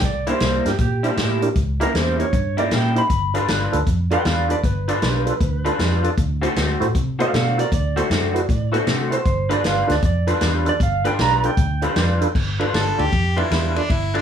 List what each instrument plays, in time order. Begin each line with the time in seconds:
0.02 fingered electric bass C2, electric slide guitar D5, kick, closed hi-hat
0.27 clean electric guitar C3 G3 A#3 E4, tonewheel organ D4 E4 G4 A#4, electric slide guitar C5, closed hi-hat
0.40 fingered electric bass C2, clean electric guitar C3 G3 A#3 E4, snare, closed hi-hat
0.65 fingered electric bass G2, tonewheel organ D4 E4 G4 A#4, electric slide guitar G4, snare, closed hi-hat
0.78 fingered electric bass A#2, electric slide guitar G4, kick, closed hi-hat
1.03 clean electric guitar C3 G3 A#3 E4, tonewheel organ D4 E4 G4 C5, closed hi-hat
1.17 fingered electric bass A2, clean electric guitar C3 G3 A#3 E4, snare, closed hi-hat
1.42 tonewheel organ D4 E4 G4 A#4, closed hi-hat
1.55 fingered electric bass C#2, kick, closed hi-hat
1.80 clean electric guitar C#3 G3 A#3 E4, tonewheel organ D#4 E4 G4 A#4, electric slide guitar A#4, closed hi-hat
1.94 fingered electric bass E2, clean electric guitar C#3 G3 A#3 E4, electric slide guitar C5, snare, closed hi-hat
2.19 tonewheel organ D#4 E4 G4 A#4, electric slide guitar C#5, closed hi-hat
2.33 fingered electric bass G2, kick, closed hi-hat
2.57 clean electric guitar C#3 G3 A#3 E4, tonewheel organ D#4 E4 G4 A#4, electric slide guitar D5, closed hi-hat
2.71 fingered electric bass A#2, clean electric guitar C#3 G3 A#3 E4, electric slide guitar G5, snare, closed hi-hat
2.95 tonewheel organ D#4 E4 G4 C5, electric slide guitar B5, closed hi-hat
3.10 fingered electric bass G1, kick, closed hi-hat
3.34 clean electric guitar G3 D4 F4 B4, tonewheel organ D4 F4 A4 B4, closed hi-hat
3.48 fingered electric bass G1, clean electric guitar G3 D4 F4 B4, snare, closed hi-hat
3.72 fingered electric bass D2, tonewheel organ D4 F4 A4 B4, closed hi-hat
3.87 fingered electric bass F2, kick, closed hi-hat
4.11 clean electric guitar G3 D4 F4 B4, tonewheel organ D4 F4 A4 D5, electric slide guitar B4 G5, closed hi-hat
4.25 fingered electric bass E2, clean electric guitar G3 D4 F4 B4, electric slide guitar D5 F5, snare, closed hi-hat
4.49 tonewheel organ D4 F4 A4 D5, electric slide guitar B4 D5, closed hi-hat
4.63 fingered electric bass G1, electric slide guitar B4, kick, closed hi-hat
4.88 clean electric guitar G3 D4 F4 B4, tonewheel organ D4 F4 A4 D5, closed hi-hat
5.01 fingered electric bass B1, clean electric guitar G3 D4 F4 B4, snare, closed hi-hat
5.26 tonewheel organ D4 F4 A4 B4, closed hi-hat
5.41 fingered electric bass D2, kick, closed hi-hat
5.65 clean electric guitar G3 D4 F4 B4, tonewheel organ D4 F4 A4 B4, closed hi-hat
5.78 fingered electric bass F2, clean electric guitar G3 D4 F4 B4, snare, closed hi-hat
6.03 tonewheel organ D4 F4 A4 D5, closed hi-hat
6.17 fingered electric bass D2, kick, closed hi-hat
6.42 clean electric guitar D3 A3 C4 F#4, tonewheel organ E4 F#4 A4 C5, closed hi-hat
6.56 fingered electric bass D2, clean electric guitar D3 A3 C4 F#4, snare, closed hi-hat
6.80 fingered electric bass A2, tonewheel organ E4 F#4 A4 C5, closed hi-hat
6.95 fingered electric bass C3, kick, closed hi-hat
7.19 clean electric guitar D3 A3 C4 F#4, tonewheel organ E4 F#4 A4 C5, electric slide guitar D5 F5, closed hi-hat
7.33 fingered electric bass B2, clean electric guitar D3 A3 C4 F#4, electric slide guitar D5 F5, snare, closed hi-hat
7.57 tonewheel organ E4 F#4 A4 C5, electric slide guitar A#4 D5, closed hi-hat
7.72 fingered electric bass D2, electric slide guitar D5, kick, closed hi-hat
7.96 clean electric guitar D3 A3 C4 F#4, tonewheel organ E4 F#4 A4 C5, closed hi-hat
8.10 fingered electric bass F#2, clean electric guitar D3 A3 C4 F#4, snare, closed hi-hat
8.34 tonewheel organ E4 F#4 A4 B4, closed hi-hat
8.49 fingered electric bass A2, kick, closed hi-hat
8.72 clean electric guitar D3 A3 C4 F#4, tonewheel organ E4 F#4 A4 B4, closed hi-hat
8.86 fingered electric bass C3, clean electric guitar D3 A3 C4 F#4, snare, closed hi-hat
9.10 tonewheel organ E4 F#4 A4 B4, electric slide guitar C5, closed hi-hat
9.25 fingered electric bass G1, kick, closed hi-hat
9.49 clean electric guitar G3 D4 F4 B4, tonewheel organ D4 F4 A4 B4, electric slide guitar D5, closed hi-hat
9.64 fingered electric bass G1, clean electric guitar G3 D4 F4 B4, electric slide guitar F5, snare, closed hi-hat
9.87 fingered electric bass D2, tonewheel organ D4 F4 A4 B4, snare, closed hi-hat
9.92 electric slide guitar D5
10.02 fingered electric bass F2, electric slide guitar D5, kick, closed hi-hat
10.27 clean electric guitar G3 D4 F4 B4, tonewheel organ D4 F4 A4 B4, closed hi-hat
10.41 fingered electric bass E2, clean electric guitar G3 D4 F4 B4, snare, closed hi-hat
10.65 tonewheel organ D4 F4 A4 B4, electric slide guitar D5, closed hi-hat
10.80 fingered electric bass G1, electric slide guitar F5, kick, closed hi-hat
11.04 clean electric guitar G3 D4 F4 B4, tonewheel organ D4 F4 A4 B4, electric slide guitar G5, closed hi-hat
11.18 fingered electric bass B1, clean electric guitar G3 D4 F4 B4, electric slide guitar A#5, snare, closed hi-hat
11.43 tonewheel organ D4 F4 A4 D5, electric slide guitar G5, closed hi-hat
11.57 fingered electric bass D2, kick, closed hi-hat
11.82 clean electric guitar G3 D4 F4 B4, tonewheel organ D4 F4 A4 B4, closed hi-hat
11.96 fingered electric bass F2, clean electric guitar G3 D4 F4 B4, snare, closed hi-hat
12.21 tonewheel organ D4 F4 A4 B4, closed hi-hat
12.35 fingered electric bass G1, kick, crash
12.59 clean electric guitar G3 D4 F4 B4, tonewheel organ D4 F4 A4 B4, ride
12.73 fingered electric bass G1, clean electric guitar G3 D4 F4 B4, harmonica A4, snare, ride
12.98 fingered electric bass D2, tonewheel organ D4 F4 A4 D5, harmonica G4, ride
13.13 fingered electric bass F2, kick, ride
13.37 clean electric guitar G3 D4 F4 B4, tonewheel organ D4 F4 A4 B4, harmonica E4, ride
13.51 fingered electric bass E2, clean electric guitar G3 D4 F4 B4, snare, ride
13.75 tonewheel organ D4 F4 A4 D5, harmonica D4, ride
13.90 fingered electric bass G1, harmonica E4, kick, ride
14.14 clean electric guitar G3 D4 F4 B4, tonewheel organ D4 F4 A4 D5, harmonica D4, ride